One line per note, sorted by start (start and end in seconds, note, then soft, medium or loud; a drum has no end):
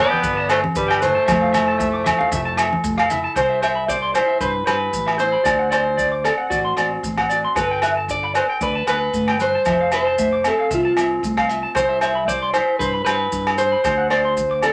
0.00 0.47 B3 medium
0.00 0.19 D4 medium
0.00 1.02 G4 medium
0.00 0.46 D5 loud
0.11 0.18 G5 medium
0.11 high conga medium
0.22 0.65 G1 loud
0.22 0.71 D3 medium
0.22 0.31 B4 medium
0.22 kick medium
0.22 maracas medium
0.37 0.44 A5 medium
0.49 0.63 A3 medium
0.49 1.28 A4 medium
0.49 0.58 B4 medium
0.49 0.58 C5 medium
0.49 cross-stick medium
0.49 closed hi-hat medium
0.49 low agogo medium
0.49 maracas medium
0.64 high conga medium
0.75 1.17 G1 loud
0.75 1.01 G3 medium
0.75 1.23 D4 medium
0.75 1.02 B4 medium
0.75 kick medium
0.75 maracas medium
0.88 0.96 G5 medium
0.88 cross-stick medium
0.88 low agogo medium
1.00 2.81 A3 medium
1.00 1.16 E4 medium
1.00 1.10 B4 medium
1.00 2.81 C5 medium
1.00 closed hi-hat medium
1.00 low conga medium
1.00 maracas medium
1.15 1.28 G4 soft
1.15 1.23 A5 medium
1.26 2.11 F1 medium
1.26 1.75 F3 medium
1.26 1.79 A3 medium
1.26 1.53 E4 medium
1.26 3.35 F4 medium
1.26 2.58 A4 medium
1.26 1.36 E5 medium
1.26 kick medium
1.26 cross-stick medium
1.26 low conga medium
1.26 low agogo medium
1.26 maracas medium
1.41 1.49 F5 medium
1.53 3.10 E4 medium
1.53 1.62 E5 medium
1.53 cross-stick medium
1.53 closed hi-hat medium
1.53 low conga medium
1.53 low agogo medium
1.53 maracas medium
1.68 1.75 A5 medium
1.79 2.28 A3 medium
1.79 1.88 E5 medium
1.79 kick medium
1.79 maracas medium
1.93 2.01 D6 medium
2.04 2.14 E5 medium
2.04 cross-stick medium
2.04 closed hi-hat soft
2.04 high conga medium
2.04 low conga medium
2.04 low agogo medium
2.04 maracas medium
2.19 2.26 F5 medium
2.19 high conga medium
2.32 2.74 F1 loud
2.32 2.80 C3 medium
2.32 2.41 E5 medium
2.32 kick medium
2.32 high conga medium
2.32 maracas medium
2.45 2.53 A5 medium
2.57 3.37 A4 medium
2.57 2.66 E5 medium
2.57 cross-stick medium
2.57 closed hi-hat medium
2.57 low agogo medium
2.57 maracas medium
2.73 high conga medium
2.84 3.26 F1 medium
2.84 3.32 A3 medium
2.84 kick medium
2.84 maracas medium
2.98 3.05 F5 medium
2.98 cross-stick medium
2.98 low agogo medium
3.10 3.34 E4 medium
3.10 3.19 E5 medium
3.10 closed hi-hat soft
3.10 low conga medium
3.10 maracas medium
3.24 3.32 A5 medium
3.36 4.19 C2 medium
3.36 3.84 C3 medium
3.36 4.67 G4 medium
3.36 3.45 C5 medium
3.36 3.63 C5 medium
3.36 kick medium
3.36 cross-stick medium
3.36 low agogo medium
3.36 maracas medium
3.50 3.57 E5 medium
3.62 3.71 C5 medium
3.62 3.88 E5 medium
3.62 cross-stick medium
3.62 closed hi-hat soft
3.62 low agogo medium
3.62 maracas medium
3.75 3.83 B5 medium
3.88 3.97 C5 medium
3.88 4.15 D5 medium
3.88 kick medium
3.88 maracas medium
4.02 4.10 C6 medium
4.14 5.19 E4 medium
4.14 4.23 C5 medium
4.14 4.39 C5 medium
4.14 cross-stick medium
4.14 closed hi-hat soft
4.14 low agogo medium
4.14 maracas medium
4.28 4.36 E5 medium
4.40 4.62 G2 medium
4.40 4.89 C3 medium
4.40 4.66 B4 medium
4.40 4.50 C5 medium
4.40 kick medium
4.40 maracas medium
4.66 4.88 G2 medium
4.66 5.20 G4 medium
4.66 5.16 B4 medium
4.66 4.75 C5 medium
4.66 cross-stick medium
4.66 closed hi-hat soft
4.66 low agogo medium
4.66 maracas medium
4.93 5.35 A1 medium
4.93 5.42 G3 medium
4.93 kick medium
4.93 maracas medium
5.07 5.14 E5 medium
5.07 cross-stick medium
5.07 low agogo medium
5.18 5.34 E4 medium
5.18 5.27 C5 medium
5.18 5.71 C5 medium
5.18 closed hi-hat soft
5.18 maracas medium
5.32 5.46 G4 soft
5.32 5.40 B5 medium
5.44 6.29 D2 medium
5.44 5.94 D3 medium
5.44 7.29 F#4 medium
5.44 5.53 D5 medium
5.44 kick medium
5.44 cross-stick medium
5.44 low agogo medium
5.44 maracas medium
5.59 5.67 F#5 medium
5.71 6.26 C5 medium
5.71 5.80 D5 medium
5.71 cross-stick medium
5.71 closed hi-hat soft
5.71 low agogo medium
5.71 maracas medium
5.97 6.46 A3 medium
5.97 6.06 D5 medium
5.97 kick medium
5.97 maracas medium
6.12 6.19 D6 medium
6.24 6.78 C4 soft
6.24 6.32 A4 medium
6.24 6.33 D5 medium
6.24 cross-stick medium
6.24 closed hi-hat soft
6.24 low agogo medium
6.24 maracas medium
6.38 6.45 F#5 medium
6.50 6.72 A1 medium
6.50 6.99 A2 medium
6.50 6.99 F#4 medium
6.50 6.59 D5 medium
6.50 kick medium
6.50 maracas medium
6.65 6.72 C6 medium
6.77 6.98 A1 medium
6.77 7.57 C4 medium
6.77 6.86 D5 medium
6.77 cross-stick medium
6.77 closed hi-hat soft
6.77 low agogo medium
6.77 maracas medium
7.03 7.45 A1 medium
7.03 7.52 A3 medium
7.03 kick medium
7.03 maracas medium
7.17 7.25 F#5 medium
7.17 kick soft
7.17 cross-stick medium
7.17 low agogo medium
7.29 7.54 F#4 medium
7.29 7.38 D5 medium
7.29 closed hi-hat soft
7.29 maracas medium
7.45 7.52 C6 medium
7.56 8.39 G1 medium
7.56 8.04 G3 medium
7.56 8.88 A4 medium
7.56 7.65 B4 medium
7.56 7.83 B4 loud
7.56 kick medium
7.56 cross-stick medium
7.56 low agogo medium
7.56 maracas medium
7.71 7.78 G5 medium
7.82 7.91 B4 medium
7.82 7.90 E5 medium
7.82 cross-stick medium
7.82 closed hi-hat soft
7.82 low agogo medium
7.82 maracas medium
7.97 8.04 A5 medium
8.08 8.57 D4 medium
8.08 8.34 D5 medium
8.08 kick medium
8.08 maracas medium
8.24 8.31 B5 medium
8.35 8.44 B4 medium
8.35 8.43 C5 medium
8.35 cross-stick medium
8.35 closed hi-hat soft
8.35 low agogo medium
8.35 maracas medium
8.50 8.57 G5 medium
8.61 8.82 D2 medium
8.61 9.09 D3 medium
8.61 8.86 B4 medium
8.61 8.70 D5 medium
8.61 kick medium
8.61 maracas medium
8.75 8.83 A5 medium
8.87 9.08 D2 medium
8.87 9.65 A4 medium
8.87 8.96 B4 medium
8.87 9.37 B4 medium
8.87 cross-stick medium
8.87 closed hi-hat soft
8.87 low agogo medium
8.87 maracas medium
9.13 9.55 G1 medium
9.13 9.39 A3 medium
9.13 kick medium
9.13 maracas medium
9.28 9.35 G5 medium
9.28 cross-stick medium
9.28 low agogo medium
9.40 9.66 G3 medium
9.40 9.49 B4 medium
9.40 9.90 C5 medium
9.40 closed hi-hat soft
9.40 maracas medium
9.55 9.62 A5 medium
9.65 10.49 F1 medium
9.65 10.13 F3 medium
9.65 11.76 A4 medium
9.65 9.75 E5 medium
9.65 kick medium
9.65 cross-stick medium
9.65 low agogo medium
9.65 maracas medium
9.81 9.88 F5 medium
9.92 10.47 C5 medium
9.92 10.01 E5 medium
9.92 cross-stick medium
9.92 closed hi-hat soft
9.92 low agogo medium
9.92 maracas medium
10.07 10.14 A5 medium
10.18 10.66 A3 medium
10.18 10.27 E5 medium
10.18 kick medium
10.18 maracas medium
10.33 10.40 D6 medium
10.44 10.98 C4 soft
10.44 10.70 A4 medium
10.44 10.53 E5 medium
10.44 cross-stick medium
10.44 closed hi-hat soft
10.44 low agogo medium
10.44 maracas medium
10.60 10.67 F5 medium
10.70 10.92 C2 medium
10.70 11.18 C3 medium
10.70 11.21 F4 medium
10.70 10.80 E5 medium
10.70 kick medium
10.70 maracas medium
10.85 10.92 A5 medium
10.97 11.18 C2 medium
10.97 11.76 C4 medium
10.97 11.05 E5 medium
10.97 cross-stick medium
10.97 closed hi-hat medium
10.97 low agogo medium
10.97 maracas medium
11.23 11.65 C2 medium
11.23 11.71 A3 medium
11.23 kick medium
11.23 maracas medium
11.37 11.45 F5 medium
11.37 kick soft
11.37 cross-stick medium
11.37 low agogo medium
11.49 11.73 F4 medium
11.49 11.58 E5 medium
11.49 closed hi-hat soft
11.49 maracas medium
11.63 11.70 A5 medium
11.75 12.59 C2 medium
11.75 12.23 C3 medium
11.75 12.26 G3 medium
11.75 12.54 E4 medium
11.75 13.07 G4 medium
11.75 11.84 C5 medium
11.75 12.00 C5 medium
11.75 kick medium
11.75 cross-stick medium
11.75 low agogo medium
11.75 maracas medium
11.89 11.96 E5 medium
12.01 12.10 C5 medium
12.01 12.28 E5 medium
12.01 cross-stick medium
12.01 closed hi-hat soft
12.01 low agogo medium
12.01 maracas medium
12.15 12.23 B5 medium
12.27 12.75 G3 medium
12.27 12.37 C5 medium
12.27 12.53 D5 medium
12.27 kick medium
12.27 maracas medium
12.42 12.50 C6 medium
12.54 13.58 E4 medium
12.54 12.78 C5 medium
12.54 12.63 C5 medium
12.54 cross-stick medium
12.54 closed hi-hat soft
12.54 low agogo medium
12.54 maracas medium
12.68 muted clean electric guitar stroke medium
12.79 13.01 G2 medium
12.79 13.28 C3 medium
12.79 13.03 B4 medium
12.79 12.89 C5 medium
12.79 kick medium
12.79 maracas medium
12.93 13.01 B5 medium
13.05 13.27 G2 medium
13.05 13.59 G4 medium
13.05 13.54 B4 medium
13.05 13.14 C5 medium
13.05 cross-stick medium
13.05 closed hi-hat soft
13.05 low agogo medium
13.05 maracas medium
13.32 13.74 G2 medium
13.32 kick medium
13.32 maracas medium
13.47 cross-stick medium
13.47 low agogo medium
13.58 13.67 C5 medium
13.58 14.10 C5 medium
13.58 muted clean electric guitar stroke medium
13.58 closed hi-hat soft
13.58 maracas medium
13.72 13.86 G4 soft
13.72 13.80 B5 medium
13.84 14.68 D2 medium
13.84 14.33 D3 medium
13.84 14.73 F#4 medium
13.84 13.93 C5 medium
13.84 kick medium
13.84 cross-stick medium
13.84 low agogo medium
13.84 maracas medium
13.98 14.06 F#5 medium
14.10 14.65 C5 medium
14.10 14.19 D5 medium
14.10 cross-stick medium
14.10 closed hi-hat soft
14.10 low agogo medium
14.25 14.33 C6 medium
14.37 14.73 A3 medium
14.37 kick medium
14.37 maracas medium
14.51 14.59 D6 medium
14.62 14.73 C4 medium
14.62 14.73 A4 medium
14.62 14.72 D5 medium
14.62 cross-stick medium
14.62 closed hi-hat soft
14.62 low agogo medium
14.62 maracas medium